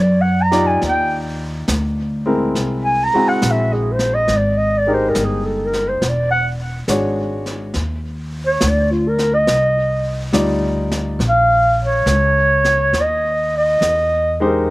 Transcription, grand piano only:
0.51 1.62 D#4 medium
0.51 1.63 F4 medium
0.51 1.62 G4 medium
0.51 1.63 D5 medium
2.26 3.07 G#3 medium
2.26 3.07 C4 medium
2.26 3.08 E4 medium
2.26 3.08 A#4 medium
3.14 4.23 G#3 medium
3.14 4.24 C4 medium
3.14 4.24 E4 medium
3.14 4.24 F#4 medium
4.87 5.12 G#3 medium
4.87 5.13 D#4 medium
4.87 5.13 G4 medium
4.87 5.13 A#4 medium
6.88 7.40 G#3 medium
6.88 7.40 D4 medium
6.88 7.41 F#4 medium
6.88 7.41 C#5 medium
10.33 11.20 G3 medium
10.33 11.20 D#4 medium
10.33 11.20 F4 medium
10.33 11.20 D5 medium
14.40 14.66 G#3 medium
14.40 14.67 D#4 medium
14.40 14.70 G4 medium
14.40 14.70 C5 medium

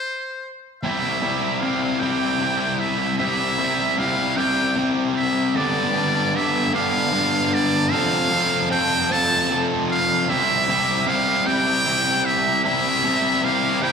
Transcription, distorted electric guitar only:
0.83 1.22 C3 medium
0.83 1.22 G3 medium
0.83 1.23 C4 medium
0.83 1.23 E4 medium
0.83 1.24 G4 loud
1.22 1.61 C3 medium
1.22 1.62 G3 medium
1.22 1.62 C4 medium
1.22 1.63 E4 medium
1.22 1.63 G4 medium
1.62 1.99 C3 medium
1.62 2.01 G3 medium
1.62 2.01 C4 medium
1.62 2.02 E4 medium
1.62 2.03 G4 medium
2.01 2.39 C3 medium
2.01 2.41 G3 medium
2.01 2.40 C4 medium
2.01 2.41 E4 loud
2.01 2.42 G4 loud
2.40 3.18 C3 medium
2.40 3.19 G3 medium
2.40 3.19 C4 medium
2.40 3.20 E4 medium
2.40 3.21 G4 medium
3.19 3.57 C3 medium
3.19 3.59 G3 medium
3.19 3.58 C4 medium
3.19 3.59 E4 medium
3.19 3.60 G4 medium
3.58 3.96 C3 medium
3.58 3.98 G3 medium
3.58 3.98 C4 medium
3.58 3.98 E4 medium
3.58 3.99 G4 medium
3.98 4.36 C3 medium
3.98 4.37 G3 medium
3.98 4.38 C4 medium
3.98 4.38 E4 medium
3.98 4.38 G4 medium
4.37 4.75 C3 medium
4.37 4.76 G3 medium
4.37 4.77 C4 medium
4.37 4.77 E4 medium
4.37 4.77 G4 medium
4.77 5.54 C3 medium
4.77 5.54 G3 medium
4.77 5.54 C4 medium
4.77 5.54 E4 medium
4.77 5.55 G4 medium
5.55 5.93 G2 medium
5.55 5.94 D3 medium
5.55 5.95 G3 medium
5.55 5.95 B3 medium
5.55 5.95 D4 medium
5.55 5.96 G4 loud
5.94 6.33 G2 medium
5.94 6.33 D3 medium
5.94 6.34 G3 medium
5.94 6.34 B3 medium
5.94 6.35 D4 medium
5.94 6.36 G4 medium
6.34 6.72 G2 medium
6.34 6.72 D3 medium
6.34 6.73 G3 medium
6.34 6.73 B3 medium
6.34 6.74 D4 medium
6.34 6.74 G4 medium
6.73 7.11 G2 medium
6.73 7.12 D3 medium
6.73 7.12 G3 loud
6.73 7.13 B3 medium
6.73 7.13 D4 medium
6.73 7.14 G4 medium
7.12 7.90 G2 medium
7.12 7.90 D3 medium
7.12 7.90 G3 medium
7.12 7.90 B3 medium
7.12 7.91 D4 medium
7.12 7.91 G4 medium
7.91 8.31 C3 medium
7.91 8.30 F3 medium
7.91 8.32 C4 loud
7.91 8.31 F4 medium
7.91 8.32 A4 loud
8.31 8.69 C3 medium
8.31 8.69 F3 medium
8.31 8.71 C4 medium
8.31 8.71 F4 medium
8.31 8.71 A4 medium
8.70 9.09 C3 medium
8.70 9.09 F3 medium
8.70 9.10 C4 medium
8.70 9.10 F4 medium
8.70 9.11 A4 medium
9.09 9.49 C3 medium
9.09 9.49 F3 medium
9.09 9.50 C4 medium
9.09 9.50 F4 medium
9.09 9.51 A4 loud
9.50 10.28 C3 medium
9.50 10.27 F3 medium
9.50 10.29 C4 medium
9.50 10.27 F4 medium
9.50 10.27 A4 loud
10.29 10.68 C3 medium
10.29 10.69 G3 medium
10.29 10.69 C4 medium
10.29 10.70 E4 medium
10.29 10.70 G4 loud
10.69 11.07 C3 medium
10.69 11.07 G3 medium
10.69 11.08 C4 medium
10.69 11.09 E4 medium
10.69 11.09 G4 medium
11.07 11.45 C3 medium
11.07 11.46 G3 medium
11.07 11.46 C4 medium
11.07 11.47 E4 medium
11.07 11.48 G4 medium
11.46 11.85 C3 medium
11.46 11.87 G3 loud
11.46 11.87 C4 loud
11.46 11.87 E4 loud
11.46 11.89 G4 loud
11.87 12.63 C3 medium
11.87 12.65 G3 medium
11.87 12.65 C4 medium
11.87 12.65 E4 medium
11.87 12.66 G4 medium
12.64 13.03 C3 medium
12.64 13.04 G3 medium
12.64 13.04 C4 loud
12.64 13.05 E4 loud
12.64 13.06 G4 loud
13.04 13.42 C3 medium
13.04 13.43 G3 medium
13.04 13.43 C4 medium
13.04 13.43 E4 medium
13.04 13.44 G4 medium
13.43 13.81 C3 medium
13.43 13.81 G3 medium
13.43 13.82 C4 medium
13.43 13.83 E4 medium
13.43 13.83 G4 medium
13.82 13.92 C3 loud
13.82 13.92 G3 medium
13.82 13.92 C4 loud
13.82 13.92 E4 loud
13.82 13.92 G4 loud

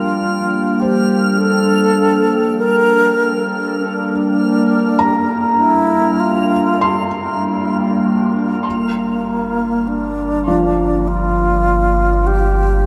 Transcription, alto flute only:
0.00 0.82 F4 medium
0.80 1.40 G4 loud
1.38 2.58 A4 loud
2.59 3.45 A#4 loud
3.79 5.60 D4 medium
5.58 6.21 E4 medium
6.20 7.43 F4 medium
8.67 9.89 A#3 medium
9.88 11.09 D4 medium
11.08 12.28 F4 loud
12.27 12.86 G4 medium

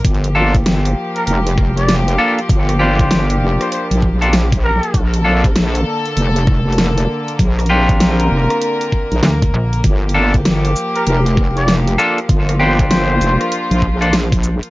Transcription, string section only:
0.06 4.91 F3 medium
0.06 14.70 A#3 medium
0.06 4.91 G4 medium
4.94 9.80 D3 medium
4.94 7.37 A4 medium
7.40 9.82 A#4 medium
9.84 14.70 F3 medium
9.84 12.27 G4 medium
12.29 14.70 F4 medium

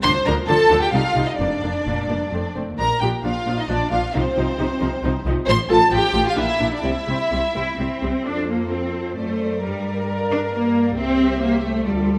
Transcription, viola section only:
0.04 0.12 F3 medium
0.04 0.12 D4 medium
0.26 0.35 F3 medium
0.26 0.34 D4 medium
0.48 0.56 F3 medium
0.48 0.56 D4 medium
0.70 0.79 F3 medium
0.70 0.78 D4 medium
0.93 1.01 G3 medium
0.93 1.02 D#4 medium
1.17 1.25 G3 soft
1.17 1.25 D#4 medium
1.40 1.48 A#3 soft
1.40 1.48 D4 soft
1.63 1.72 A#3 soft
1.63 1.71 D4 soft
1.87 1.95 A#3 soft
1.87 1.95 D4 soft
2.09 2.17 A#3 soft
2.09 2.17 D4 soft
2.33 2.42 A3 soft
2.33 2.41 C4 soft
2.56 2.64 A3 soft
2.56 2.64 C4 soft
2.79 2.87 F3 soft
2.79 2.87 D4 soft
3.02 3.10 F3 soft
3.02 3.10 D4 soft
3.24 3.32 F3 soft
3.24 3.32 D4 soft
3.46 3.54 F3 soft
3.46 3.54 D4 soft
3.69 3.77 F3 soft
3.69 3.77 D4 medium
3.91 3.99 F3 soft
3.91 3.99 D4 medium
4.14 4.23 F3 medium
4.14 4.22 D#4 medium
4.37 4.45 F3 medium
4.37 4.45 D#4 soft
4.58 4.66 F3 medium
4.58 4.67 D#4 medium
4.80 4.89 F3 medium
4.80 4.88 D#4 medium
5.03 5.11 F3 medium
5.03 5.12 D#4 medium
5.26 5.34 F3 medium
5.26 5.34 D#4 medium
5.48 5.56 F3 medium
5.48 5.56 F4 medium
5.69 5.77 F3 medium
5.69 5.77 F4 medium
5.91 5.99 F3 medium
5.91 5.99 F4 medium
6.13 6.21 F3 medium
6.13 6.21 F4 medium
6.36 6.44 A#3 medium
6.36 6.44 D4 medium
6.59 6.67 A#3 soft
6.59 6.67 D4 medium
6.83 6.91 G3 soft
6.83 6.91 C4 soft
7.08 7.16 G3 soft
7.08 7.16 C4 soft
7.32 7.40 G3 soft
7.32 7.40 C4 soft
7.55 7.63 G3 soft
7.55 7.63 C4 soft
7.79 7.87 G3 soft
7.79 7.87 C4 soft
8.02 8.10 G3 soft
8.02 8.10 C4 soft
8.24 9.12 F4 soft
9.17 9.59 A4 soft
9.63 10.93 A#4 soft
10.96 11.82 G4 soft
11.86 12.19 F4 soft

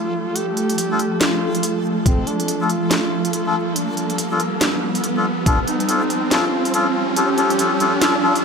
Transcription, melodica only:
0.91 1.00 D4 loud
0.91 1.00 F4 medium
0.91 1.00 A4 loud
2.61 2.70 D4 medium
2.61 2.70 F4 medium
2.61 2.70 A4 medium
3.46 3.55 D4 medium
3.46 3.56 F4 medium
3.46 3.55 A4 loud
4.31 4.41 D4 medium
4.31 4.41 F4 medium
4.31 4.41 A4 loud
5.17 5.26 D4 loud
5.17 5.26 F4 medium
5.17 5.26 A4 loud
5.46 5.60 D4 loud
5.46 5.60 F4 medium
5.46 5.60 A4 loud
5.89 6.02 D4 loud
5.89 6.02 F4 medium
5.89 6.02 A4 loud
6.31 6.45 D4 loud
6.31 6.45 F4 medium
6.31 6.45 A4 loud
6.74 6.87 D4 loud
6.74 6.87 F4 medium
6.74 6.87 A4 loud
7.16 7.30 D4 loud
7.16 7.30 F4 medium
7.16 7.30 A4 loud
7.38 7.51 D4 loud
7.38 7.51 F4 loud
7.38 7.51 A4 loud
7.59 7.72 D4 loud
7.59 7.72 F4 medium
7.59 7.72 A4 loud
7.80 7.94 D4 loud
7.80 7.94 F4 loud
7.80 7.94 A4 loud
8.02 8.15 D4 loud
8.02 8.15 F4 medium
8.02 8.15 A4 loud
8.23 8.36 D4 loud
8.23 8.36 F4 medium
8.23 8.36 A4 loud

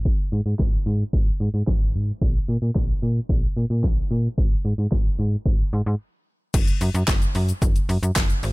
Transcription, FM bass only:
0.00 0.13 G#1 loud
0.32 0.41 G#2 loud
0.46 0.55 G#2 medium
0.60 0.77 G#1 loud
0.86 1.04 G#2 loud
1.13 1.31 G#1 loud
1.40 1.49 G#2 loud
1.54 1.63 G#2 loud
1.67 1.96 G#1 loud
1.94 2.12 G#2 loud
2.22 2.39 A#1 loud
2.48 2.57 A#2 loud
2.62 2.71 A#2 loud
2.76 2.93 A#1 loud
3.02 3.20 A#2 loud
3.29 3.47 A#1 loud
3.57 3.65 A#2 loud
3.70 3.85 A#2 loud
3.84 4.01 A#1 medium
4.11 4.28 A#2 loud
4.38 4.55 G#1 loud
4.65 4.74 G#2 medium
4.78 4.87 G#2 loud
4.92 5.09 G#1 loud
5.19 5.36 G#2 loud
5.46 5.63 G#1 loud
5.73 5.82 G#2 loud
5.86 5.95 G#2 loud
6.54 6.72 F#1 loud
6.81 6.90 F#2 loud
6.95 7.03 F#2 loud
7.08 7.26 F#1 loud
7.35 7.53 F#2 loud
7.62 7.80 F#1 loud
7.89 7.98 F#2 loud
8.03 8.11 F#2 loud
8.16 8.34 F#1 loud
8.43 8.53 G#1 loud

